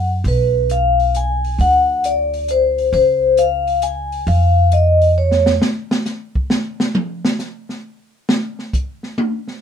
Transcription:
0.00 0.21 F#2 medium
0.24 1.55 B1 medium
0.24 0.69 B4 medium
0.24 open hi-hat soft
0.70 1.13 F5 medium
0.70 closed hi-hat medium
1.00 open hi-hat soft
1.15 1.57 G#5 medium
1.15 closed hi-hat medium
1.45 open hi-hat soft
1.58 2.89 D2 medium
1.58 2.02 F#5 loud
1.58 open hi-hat soft
2.04 2.47 D5 medium
2.04 closed hi-hat medium
2.34 open hi-hat soft
2.48 2.85 C5 medium
2.48 closed hi-hat medium
2.78 open hi-hat soft
2.93 4.23 C#2 medium
2.93 3.40 C5 medium
2.93 open hi-hat soft
3.37 3.80 F5 medium
3.37 closed hi-hat medium
3.67 open hi-hat soft
3.82 4.25 G#5 medium
3.82 closed hi-hat medium
4.12 open hi-hat soft
4.27 5.57 F2 medium
4.27 4.74 F5 medium
4.27 open hi-hat soft
4.72 5.14 D#5 medium
4.72 closed hi-hat medium
5.02 open hi-hat soft
5.18 5.52 C#5 medium
5.31 snare medium
5.46 snare medium
5.62 snare medium
5.91 snare medium
6.06 snare soft
6.06 hi-hat pedal medium
6.35 kick medium
6.50 snare loud
6.80 snare medium
6.95 mid tom loud
7.25 snare loud
7.39 snare soft
7.39 hi-hat pedal medium
7.69 snare soft
8.29 snare medium
8.59 snare soft
8.73 kick medium
8.73 hi-hat pedal medium
9.03 snare soft
9.18 high tom loud
9.48 snare soft

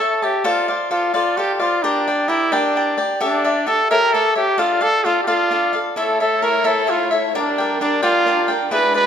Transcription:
0.00 0.23 A4 medium
0.00 0.25 A4 medium
0.00 0.23 C#5 medium
0.00 0.22 E5 medium
0.00 0.21 A5 medium
0.22 0.48 G4 medium
0.22 0.44 C#5 soft
0.22 0.44 E5 medium
0.22 0.45 A5 medium
0.44 0.69 F4 medium
0.44 0.68 A4 medium
0.44 0.69 C5 medium
0.44 0.67 D5 medium
0.44 0.67 F5 medium
0.68 0.90 C5 soft
0.68 0.91 D5 medium
0.68 0.90 F5 soft
0.91 1.13 F4 medium
0.91 1.14 A4 medium
0.91 1.13 C5 soft
0.91 1.13 D5 medium
0.91 1.12 F5 medium
1.14 1.39 F4 medium
1.14 1.36 A4 medium
1.14 1.36 C5 medium
1.14 1.38 D5 medium
1.14 1.37 F5 medium
1.37 1.55 G4 medium
1.37 1.61 A4 medium
1.37 1.60 C5 medium
1.37 1.58 D5 medium
1.37 1.58 F5 soft
1.55 1.62 G4 medium
1.59 1.85 F4 medium
1.59 1.83 C5 soft
1.59 1.83 D5 medium
1.59 1.83 F5 medium
1.83 2.30 D4 medium
1.83 2.07 G4 medium
1.83 2.07 A#4 medium
1.83 2.06 D5 medium
1.83 2.07 G5 medium
2.08 2.27 G4 soft
2.08 2.28 D5 medium
2.08 2.28 G5 soft
2.28 2.54 E4 medium
2.28 2.52 G4 soft
2.28 2.52 A#4 soft
2.28 2.51 D5 medium
2.28 2.51 G5 medium
2.52 3.04 D4 medium
2.52 2.75 G4 medium
2.52 2.75 A#4 medium
2.52 2.75 D5 medium
2.52 2.76 G5 medium
2.76 2.98 G4 medium
2.76 2.98 A#4 medium
2.76 2.96 D5 medium
2.76 2.97 G5 medium
2.97 3.19 G4 soft
2.97 3.20 D5 medium
2.97 3.21 G5 soft
3.20 3.68 D4 medium
3.20 3.44 G4 medium
3.20 3.44 A4 medium
3.20 3.43 D5 medium
3.20 3.44 E5 medium
3.44 3.66 G4 medium
3.44 3.67 D5 medium
3.44 3.66 E5 medium
3.66 3.90 G4 medium
3.66 3.89 A4 soft
3.66 3.90 A4 medium
3.66 3.90 D5 medium
3.66 3.90 E5 medium
3.90 4.13 G4 medium
3.90 4.13 A4 medium
3.90 4.14 A#4 loud
3.90 4.13 C#5 medium
3.90 4.14 E5 medium
4.13 4.36 G4 medium
4.13 4.36 A4 loud
4.13 4.35 A4 medium
4.13 4.34 C#5 medium
4.13 4.34 E5 medium
4.35 4.60 G4 medium
4.35 4.57 A4 soft
4.35 4.58 C#5 soft
4.35 4.58 E5 medium
4.58 4.82 D4 medium
4.58 4.84 F4 medium
4.58 4.80 A4 medium
4.58 4.80 D5 medium
4.58 4.79 F5 medium
4.81 5.05 A4 soft
4.81 5.06 A4 loud
4.81 5.05 D5 medium
4.81 5.04 F5 medium
5.04 5.27 D4 medium
5.04 5.21 F4 medium
5.04 5.27 A4 medium
5.04 5.26 D5 medium
5.04 5.26 F5 medium
5.23 5.29 G4 medium
5.27 5.50 D4 medium
5.27 5.80 F4 loud
5.27 5.50 A4 medium
5.27 5.50 D5 medium
5.27 5.52 F5 medium
5.51 5.74 D4 medium
5.51 5.73 A4 soft
5.51 5.72 D5 medium
5.51 5.72 F5 medium
5.73 5.96 A4 soft
5.73 5.97 D5 soft
5.73 5.97 F5 medium
5.96 7.34 A3 medium
5.96 6.21 E4 medium
5.96 7.34 E4 medium
5.96 6.21 A4 medium
5.96 6.19 A4 medium
5.96 6.20 C#5 medium
5.96 7.34 C#5 medium
5.96 6.19 E5 medium
6.20 6.44 A4 medium
6.20 6.41 A4 soft
6.20 6.42 C#5 soft
6.20 6.42 E5 medium
6.42 6.64 E4 medium
6.42 6.63 A4 medium
6.42 6.68 A#4 medium
6.42 6.63 C#5 medium
6.42 6.63 E5 medium
6.64 6.86 E4 medium
6.64 6.86 A4 medium
6.64 6.91 A4 loud
6.64 6.87 C#5 medium
6.64 6.87 E5 medium
6.87 7.11 E4 soft
6.87 7.13 F4 medium
6.87 7.11 A4 medium
6.87 7.11 C#5 medium
6.87 7.10 E5 medium
7.11 7.35 A4 soft
7.11 7.35 C#5 medium
7.11 7.34 E5 soft
7.34 8.70 G3 medium
7.34 9.07 D4 medium
7.34 7.58 D4 medium
7.34 7.78 D4 medium
7.34 8.70 A#4 medium
7.34 7.59 A#4 medium
7.34 7.57 D5 medium
7.34 7.57 G5 medium
7.58 7.80 A#4 medium
7.58 7.80 D5 soft
7.58 7.81 G5 medium
7.80 8.02 D4 medium
7.80 8.03 D4 medium
7.80 8.02 A#4 medium
7.80 8.01 D5 medium
7.80 8.01 G5 medium
8.03 8.25 D4 medium
8.03 8.51 F4 loud
8.03 8.26 A#4 medium
8.03 8.26 D5 medium
8.03 8.26 G5 medium
8.26 8.49 D4 medium
8.26 8.49 A#4 medium
8.26 8.48 D5 medium
8.26 8.47 G5 medium
8.48 8.71 A#4 soft
8.48 8.71 D5 medium
8.48 8.71 G5 medium
8.71 9.07 G#3 medium
8.71 8.95 E4 medium
8.71 9.07 F#4 medium
8.71 8.94 G#4 medium
8.71 8.94 B4 medium
8.71 8.94 B4 loud
8.71 8.93 D5 medium
8.94 9.07 G#4 soft
8.94 9.07 B4 medium
8.94 9.07 B4 loud
8.94 9.07 D5 medium

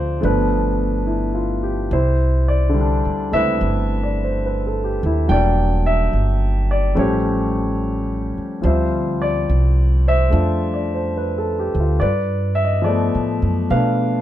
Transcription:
0.00 0.19 D2 medium
0.00 0.19 F3 soft
0.00 0.20 A3 soft
0.00 0.23 C4 soft
0.00 0.25 F4 medium
0.00 0.25 C5 medium
0.00 0.25 D5 medium
0.00 0.23 E5 soft
0.21 1.88 G1 medium
0.21 1.91 F3 soft
0.21 1.91 A3 soft
0.21 1.91 B3 soft
0.21 1.91 D4 soft
0.21 1.62 B4 medium
1.07 1.61 E4 soft
1.34 1.79 F4 soft
1.63 2.07 G4 soft
1.91 3.00 C2 medium
1.91 3.33 E4 soft
1.91 2.50 C5 medium
2.48 3.00 D5 medium
2.69 5.25 D3 soft
2.69 5.26 G3 soft
2.80 5.28 D4 soft
3.05 3.31 D2 soft
3.31 3.59 C#2 medium
3.31 5.28 A3 soft
3.31 5.29 C4 soft
3.31 5.04 E4 soft
3.31 4.44 B4 medium
3.31 4.98 E5 medium
3.61 4.98 G1 medium
4.03 4.29 D5 soft
4.24 4.53 C5 soft
4.46 4.86 B4 soft
4.67 5.03 A4 soft
4.84 5.11 G4 soft
5.03 5.27 D#2 medium
5.03 5.36 E4 soft
5.27 6.09 E1 medium
5.27 6.96 F#3 soft
5.27 6.93 G3 soft
5.27 6.97 A#3 soft
5.27 6.97 D4 soft
5.27 5.88 G5 medium
5.32 6.69 D5 medium
5.86 6.73 E5 medium
6.13 6.93 G1 medium
6.71 6.95 D5 medium
6.95 8.34 A1 medium
6.95 8.60 F3 soft
6.95 8.61 G3 soft
6.95 8.64 A3 soft
6.95 8.64 C#4 soft
6.95 8.35 C#5 medium
7.01 8.63 G4 soft
8.38 muted upright bass stroke soft
8.62 9.44 D2 medium
8.62 12.00 F3 soft
8.62 12.00 G3 soft
8.62 12.01 C4 soft
8.62 9.17 C5 medium
8.66 10.30 F4 soft
8.66 10.07 E5 soft
9.22 9.73 D5 medium
9.49 10.29 C2 medium
10.08 10.93 C5 medium
10.08 11.72 E5 medium
10.30 11.71 F2 medium
10.30 12.00 A3 soft
10.30 12.01 D4 soft
10.30 11.79 F4 soft
10.74 11.00 D5 soft
10.95 11.25 C5 soft
11.17 11.57 B4 soft
11.38 11.75 A4 soft
11.59 11.85 G4 soft
11.75 11.99 D2 medium
11.80 12.10 F4 soft
12.00 13.10 G2 medium
12.00 13.67 B4 soft
12.00 12.65 D5 medium
12.55 12.82 E5 medium
12.64 12.66 D#5 soft
12.82 14.21 F3 soft
12.82 13.71 A3 soft
12.82 13.66 D5 medium
12.88 14.21 B3 soft
13.15 13.40 A2 soft
13.42 13.68 F#2 soft
13.70 14.21 B2 medium
13.70 14.21 A3 soft
13.70 14.21 B4 soft
13.70 14.21 F5 medium
13.75 14.21 D4 soft

